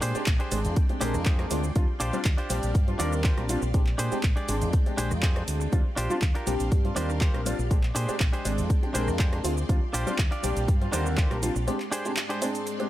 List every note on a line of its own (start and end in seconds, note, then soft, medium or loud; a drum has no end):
0.00 0.12 A#2 medium
0.00 1.74 G#3 medium
0.00 0.21 D4 loud
0.00 0.21 G4 loud
0.00 0.21 G#4 loud
0.00 0.21 C5 loud
0.00 1.72 D5 medium
0.00 1.74 G5 medium
0.00 5.68 C6 medium
0.00 open hi-hat loud
0.00 shaker medium
0.15 0.22 G#3 medium
0.15 0.22 C4 medium
0.15 0.22 D4 medium
0.15 0.22 G4 medium
0.15 muted fingered electric bass stroke soft
0.15 closed hi-hat soft
0.15 shaker soft
0.26 0.36 A#1 medium
0.26 kick loud
0.26 clap loud
0.26 closed hi-hat medium
0.26 shaker soft
0.39 0.58 D4 medium
0.39 0.58 G4 medium
0.39 0.59 G#4 medium
0.39 0.59 C5 loud
0.39 closed hi-hat medium
0.51 0.66 G#1 loud
0.51 0.86 G#3 medium
0.51 0.86 C4 medium
0.51 0.87 D4 medium
0.51 open hi-hat loud
0.51 shaker medium
0.65 0.73 F2 loud
0.65 closed hi-hat medium
0.65 shaker soft
0.76 muted clean electric guitar stroke soft
0.76 kick loud
0.76 closed hi-hat medium
0.76 shaker soft
0.89 0.96 G#3 medium
0.89 0.96 C4 medium
0.89 0.96 D4 medium
0.89 0.96 G4 medium
0.89 closed hi-hat soft
1.01 1.16 A#1 medium
1.01 1.36 G#3 loud
1.01 1.36 C4 medium
1.01 1.14 D4 loud
1.01 1.36 D4 medium
1.01 1.14 G4 loud
1.01 1.15 G#4 loud
1.01 1.36 A#4 loud
1.01 1.15 C5 loud
1.01 open hi-hat loud
1.01 shaker medium
1.14 1.46 F2 loud
1.14 cross-stick medium
1.14 shaker soft
1.25 1.45 D4 medium
1.25 1.45 G4 medium
1.25 1.45 G#4 medium
1.25 1.46 C5 loud
1.25 1.72 D5 medium
1.25 kick loud
1.25 clap loud
1.25 closed hi-hat medium
1.25 shaker soft
1.39 1.48 G#3 medium
1.39 1.48 C4 medium
1.39 1.48 D4 medium
1.39 1.48 A#4 loud
1.39 cross-stick medium
1.39 closed hi-hat soft
1.51 1.69 D2 loud
1.51 1.58 G#3 loud
1.51 1.58 C4 medium
1.51 1.58 D4 medium
1.51 1.58 F4 loud
1.51 open hi-hat loud
1.51 shaker medium
1.63 muted clean electric guitar stroke soft
1.63 shaker soft
1.75 1.85 D#2 loud
1.75 1.83 G3 medium
1.75 1.83 C4 medium
1.75 1.83 D4 medium
1.75 1.83 F4 loud
1.75 3.72 G4 medium
1.75 5.69 D5 medium
1.75 3.72 F5 medium
1.75 kick loud
1.75 closed hi-hat medium
1.75 shaker soft
2.00 2.10 A#1 medium
2.00 2.19 D4 loud
2.00 2.19 F4 loud
2.00 2.20 G4 loud
2.00 2.20 C5 loud
2.00 open hi-hat loud
2.00 shaker medium
2.13 2.20 G3 medium
2.13 2.20 C4 medium
2.13 2.20 D4 medium
2.13 2.20 F4 medium
2.13 closed hi-hat soft
2.13 shaker soft
2.25 2.35 D#2 medium
2.25 kick loud
2.25 clap loud
2.25 closed hi-hat medium
2.25 shaker soft
2.37 2.56 D4 medium
2.37 2.57 F4 medium
2.37 2.57 G4 medium
2.37 2.57 C5 loud
2.37 closed hi-hat medium
2.50 2.60 A#1 loud
2.50 2.85 G3 loud
2.50 2.85 C4 medium
2.50 2.85 D4 medium
2.50 2.85 G4 loud
2.50 open hi-hat loud
2.50 shaker medium
2.63 2.72 A#1 loud
2.63 closed hi-hat medium
2.63 shaker soft
2.74 2.93 G2 loud
2.74 muted clean electric guitar stroke soft
2.74 kick loud
2.74 closed hi-hat medium
2.74 shaker soft
2.88 2.94 G3 medium
2.88 2.94 C4 medium
2.88 2.95 D4 medium
2.88 2.95 F4 medium
2.88 closed hi-hat soft
2.99 3.32 D#2 loud
2.99 3.34 G3 loud
2.99 3.34 C4 medium
2.99 3.12 D4 loud
2.99 3.35 D4 medium
2.99 3.13 F4 loud
2.99 3.13 G4 loud
2.99 3.35 A#4 loud
2.99 3.13 D5 loud
2.99 open hi-hat loud
2.99 shaker medium
3.13 cross-stick medium
3.13 shaker soft
3.23 3.43 D4 medium
3.23 3.43 F4 medium
3.23 3.44 G4 medium
3.23 3.44 C5 loud
3.23 kick loud
3.23 clap loud
3.23 open hi-hat medium
3.23 shaker soft
3.37 3.55 A#1 medium
3.37 3.46 G3 medium
3.37 3.47 C4 medium
3.37 3.47 D4 medium
3.37 3.47 A#4 loud
3.37 cross-stick medium
3.37 closed hi-hat soft
3.49 3.56 G3 loud
3.49 3.57 C4 medium
3.49 3.57 D4 medium
3.49 3.57 F4 loud
3.49 open hi-hat loud
3.49 shaker medium
3.62 3.94 A#1 loud
3.62 muted clean electric guitar stroke soft
3.62 shaker soft
3.74 3.81 G#3 medium
3.74 5.71 G#3 medium
3.74 3.81 C4 medium
3.74 3.82 D4 medium
3.74 3.82 G4 loud
3.74 5.71 G5 medium
3.74 kick loud
3.74 closed hi-hat medium
3.74 shaker soft
3.87 clap soft
3.98 4.08 A#2 medium
3.98 4.17 D4 loud
3.98 4.18 G4 loud
3.98 4.18 G#4 loud
3.98 4.18 C5 loud
3.98 open hi-hat loud
3.98 shaker medium
4.12 4.18 G#3 medium
4.12 4.19 C4 medium
4.12 4.19 D4 medium
4.12 4.19 G4 medium
4.12 muted fingered electric bass stroke soft
4.12 closed hi-hat soft
4.12 shaker soft
4.23 4.33 A#1 medium
4.23 kick loud
4.23 clap loud
4.23 closed hi-hat medium
4.23 shaker soft
4.36 4.55 D4 medium
4.36 4.55 G4 medium
4.36 4.55 G#4 medium
4.36 4.55 D5 loud
4.36 closed hi-hat soft
4.48 4.63 G#1 loud
4.48 4.83 G#3 medium
4.48 4.83 C4 medium
4.48 4.83 D4 medium
4.48 open hi-hat loud
4.48 shaker medium
4.62 4.70 F2 loud
4.62 closed hi-hat soft
4.62 shaker soft
4.73 muted clean electric guitar stroke soft
4.73 kick loud
4.73 closed hi-hat medium
4.73 shaker soft
4.86 4.93 G#3 medium
4.86 4.93 C4 medium
4.86 4.93 D4 medium
4.86 4.93 G4 medium
4.86 closed hi-hat soft
4.97 5.13 A#1 medium
4.97 5.11 D4 loud
4.97 5.11 G4 loud
4.97 5.11 G#4 loud
4.97 5.11 C5 loud
4.97 open hi-hat loud
4.97 shaker medium
5.11 5.43 F2 loud
5.11 cross-stick medium
5.11 shaker soft
5.22 5.42 D4 medium
5.22 5.42 G4 medium
5.22 5.42 G#4 medium
5.22 5.42 C5 loud
5.22 kick loud
5.22 clap loud
5.22 closed hi-hat medium
5.22 shaker soft
5.36 5.70 G#3 medium
5.36 5.70 C4 medium
5.36 5.70 D4 medium
5.36 cross-stick medium
5.36 closed hi-hat soft
5.48 5.66 D2 loud
5.48 open hi-hat loud
5.48 shaker medium
5.60 muted clean electric guitar stroke soft
5.60 shaker soft
5.72 5.82 D#2 loud
5.72 5.80 G3 medium
5.72 5.80 C4 medium
5.72 5.80 D4 medium
5.72 5.80 F4 medium
5.72 7.69 G4 medium
5.72 11.64 D5 medium
5.72 7.69 F5 medium
5.72 7.69 C6 medium
5.72 kick loud
5.72 closed hi-hat medium
5.72 shaker soft
5.96 6.07 A#1 medium
5.96 6.16 D4 loud
5.96 6.16 F4 medium
5.96 6.16 G4 loud
5.96 6.17 C5 loud
5.96 open hi-hat loud
5.96 shaker medium
6.10 6.17 G3 medium
6.10 6.17 C4 medium
6.10 6.17 D4 medium
6.10 6.17 F4 medium
6.10 closed hi-hat soft
6.10 shaker soft
6.22 6.32 D#2 medium
6.22 kick loud
6.22 clap loud
6.22 closed hi-hat medium
6.22 shaker soft
6.34 6.53 D4 medium
6.34 6.53 F4 medium
6.34 6.54 G4 medium
6.34 6.54 A#4 loud
6.34 closed hi-hat soft
6.47 6.56 A#1 loud
6.47 6.81 G3 loud
6.47 6.81 C4 medium
6.47 6.82 D4 medium
6.47 6.82 G4 loud
6.47 open hi-hat loud
6.47 shaker medium
6.60 6.68 A#1 loud
6.60 closed hi-hat medium
6.60 shaker soft
6.71 6.90 G2 medium
6.71 muted clean electric guitar stroke soft
6.71 kick loud
6.71 closed hi-hat medium
6.71 shaker soft
6.84 6.91 G3 medium
6.84 6.91 C4 medium
6.84 6.91 D4 medium
6.84 6.91 F4 medium
6.84 closed hi-hat soft
6.96 7.29 D#2 loud
6.96 7.31 G3 loud
6.96 7.31 C4 medium
6.96 7.09 D4 loud
6.96 7.31 D4 medium
6.96 7.09 F4 loud
6.96 7.10 G4 loud
6.96 7.31 A#4 loud
6.96 7.10 C5 loud
6.96 open hi-hat loud
6.96 shaker medium
7.10 cross-stick medium
7.10 shaker soft
7.21 7.40 D4 medium
7.21 7.40 F4 medium
7.21 7.40 G4 medium
7.21 7.41 C5 loud
7.21 kick loud
7.21 clap loud
7.21 open hi-hat medium
7.21 shaker soft
7.34 7.52 A#1 medium
7.34 7.43 G3 medium
7.34 7.43 C4 medium
7.34 7.43 D4 medium
7.34 7.43 A#4 medium
7.34 cross-stick medium
7.34 closed hi-hat soft
7.46 7.53 G3 loud
7.46 7.53 C4 medium
7.46 7.53 D4 medium
7.46 7.53 F4 loud
7.46 open hi-hat loud
7.46 shaker medium
7.58 7.90 A#1 loud
7.58 muted clean electric guitar stroke soft
7.58 shaker soft
7.71 7.78 G#3 medium
7.71 9.67 G#3 medium
7.71 7.78 C4 medium
7.71 7.78 D4 medium
7.71 7.78 G4 loud
7.71 9.67 G5 medium
7.71 11.64 C6 medium
7.71 kick loud
7.71 closed hi-hat medium
7.71 shaker soft
7.83 clap soft
7.95 8.05 A#2 medium
7.95 8.14 D4 loud
7.95 8.14 G4 medium
7.95 8.15 G#4 loud
7.95 8.15 C5 loud
7.95 open hi-hat loud
7.95 shaker medium
8.08 8.15 G#3 medium
8.08 8.15 C4 medium
8.08 8.15 D4 medium
8.08 8.15 G4 medium
8.08 muted fingered electric bass stroke soft
8.08 closed hi-hat soft
8.08 shaker soft
8.20 8.30 A#1 medium
8.20 kick loud
8.20 clap loud
8.20 closed hi-hat medium
8.20 shaker soft
8.33 8.51 D4 medium
8.33 8.52 G4 medium
8.33 8.52 G#4 medium
8.33 8.52 C5 loud
8.33 closed hi-hat medium
8.45 8.60 G#1 loud
8.45 8.80 G#3 medium
8.45 8.80 C4 medium
8.45 8.80 D4 medium
8.45 open hi-hat loud
8.45 shaker medium
8.58 8.67 F2 loud
8.58 closed hi-hat medium
8.58 shaker soft
8.69 muted clean electric guitar stroke soft
8.69 kick loud
8.69 closed hi-hat medium
8.69 shaker soft
8.82 8.89 G#3 medium
8.82 8.89 C4 medium
8.82 8.90 D4 medium
8.82 8.90 G4 medium
8.82 closed hi-hat soft
8.94 9.09 A#1 medium
8.94 9.29 G#3 loud
8.94 9.29 C4 medium
8.94 9.07 D4 loud
8.94 9.30 D4 medium
8.94 9.08 G4 loud
8.94 9.08 G#4 loud
8.94 9.30 A#4 loud
8.94 9.08 C5 loud
8.94 open hi-hat loud
8.94 shaker medium
9.08 9.39 F2 loud
9.08 cross-stick medium
9.08 shaker soft
9.19 9.38 D4 medium
9.19 9.38 G4 medium
9.19 9.39 G#4 medium
9.19 9.39 C5 loud
9.19 kick loud
9.19 clap loud
9.19 closed hi-hat medium
9.19 shaker soft
9.32 9.41 G#3 medium
9.32 9.42 C4 medium
9.32 9.42 D4 medium
9.32 9.42 A#4 medium
9.32 cross-stick medium
9.32 closed hi-hat soft
9.44 9.63 D2 loud
9.44 9.51 G#3 loud
9.44 9.52 C4 medium
9.44 9.52 D4 medium
9.44 9.52 F4 loud
9.44 open hi-hat loud
9.44 shaker medium
9.57 muted clean electric guitar stroke soft
9.57 shaker soft
9.69 9.79 D#2 loud
9.69 9.76 G3 medium
9.69 9.76 C4 medium
9.69 9.76 D4 medium
9.69 9.77 F4 loud
9.69 11.66 G4 medium
9.69 11.66 F5 medium
9.69 kick loud
9.69 closed hi-hat medium
9.69 shaker soft
9.93 10.03 A#1 medium
9.93 10.13 D4 loud
9.93 10.13 F4 loud
9.93 10.13 G4 loud
9.93 10.13 C5 loud
9.93 open hi-hat loud
9.93 shaker medium
10.06 10.13 G3 medium
10.06 10.13 C4 medium
10.06 10.14 D4 medium
10.06 10.14 F4 medium
10.06 closed hi-hat soft
10.06 shaker soft
10.18 10.28 D#2 medium
10.18 kick loud
10.18 clap loud
10.18 closed hi-hat medium
10.18 shaker soft
10.31 10.50 D4 medium
10.31 10.50 F4 medium
10.31 10.50 G4 medium
10.31 10.50 D5 loud
10.31 closed hi-hat medium
10.43 10.53 A#1 loud
10.43 10.78 G3 loud
10.43 10.78 C4 medium
10.43 10.78 D4 medium
10.43 10.78 G4 loud
10.43 open hi-hat loud
10.43 shaker medium
10.56 10.65 A#1 loud
10.56 closed hi-hat medium
10.56 shaker soft
10.68 10.87 G2 loud
10.68 muted clean electric guitar stroke soft
10.68 kick loud
10.68 closed hi-hat medium
10.68 shaker soft
10.81 10.88 G3 medium
10.81 10.88 C4 medium
10.81 10.88 D4 medium
10.81 10.88 F4 medium
10.81 closed hi-hat soft
10.92 11.25 D#2 loud
10.92 11.28 D3 medium
10.92 11.28 G3 loud
10.92 11.28 C4 medium
10.92 11.06 D4 loud
10.92 11.06 F4 loud
10.92 11.06 G4 loud
10.92 11.28 A#4 loud
10.92 11.07 C5 loud
10.92 open hi-hat loud
10.92 shaker medium
11.06 cross-stick medium
11.06 shaker soft
11.17 11.36 D4 medium
11.17 11.37 F4 medium
11.17 11.37 G4 medium
11.17 11.37 C5 loud
11.17 kick loud
11.17 clap loud
11.17 open hi-hat medium
11.17 shaker soft
11.31 11.48 A#1 medium
11.31 11.40 G3 medium
11.31 11.40 C4 medium
11.31 11.40 D4 medium
11.31 11.40 A#4 loud
11.31 cross-stick medium
11.31 closed hi-hat soft
11.42 11.50 G3 loud
11.42 11.50 C4 loud
11.42 11.50 D4 medium
11.42 11.50 F4 loud
11.42 open hi-hat loud
11.42 shaker medium
11.55 11.68 A#1 loud
11.55 muted clean electric guitar stroke soft
11.55 shaker soft
11.67 11.75 G#3 medium
11.67 12.89 G#3 medium
11.67 11.75 C4 medium
11.67 11.75 D4 medium
11.67 11.75 G4 loud
11.67 12.89 D5 medium
11.67 12.89 G5 medium
11.67 12.89 C6 medium
11.67 closed hi-hat medium
11.67 shaker soft
11.80 clap soft
11.80 closed hi-hat soft
11.91 12.11 D4 loud
11.91 12.11 G4 loud
11.91 12.11 G#4 loud
11.91 12.12 C5 loud
11.91 open hi-hat loud
11.91 shaker medium
12.05 12.12 G#3 medium
12.05 12.12 C4 medium
12.05 12.12 D4 medium
12.05 12.12 G4 medium
12.05 closed hi-hat soft
12.05 shaker soft
12.17 clap loud
12.17 closed hi-hat medium
12.17 shaker soft
12.29 12.48 D4 medium
12.29 12.48 G4 medium
12.29 12.49 G#4 medium
12.29 12.49 C5 loud
12.29 closed hi-hat medium
12.42 12.77 G#3 loud
12.42 12.77 C4 medium
12.42 12.77 D4 medium
12.42 open hi-hat loud
12.42 shaker medium
12.55 closed hi-hat medium
12.55 shaker soft
12.66 muted clean electric guitar stroke soft
12.66 closed hi-hat medium
12.66 shaker soft
12.79 12.86 G#3 medium
12.79 12.86 C4 medium
12.79 12.86 D4 medium
12.79 12.86 G4 medium
12.79 closed hi-hat soft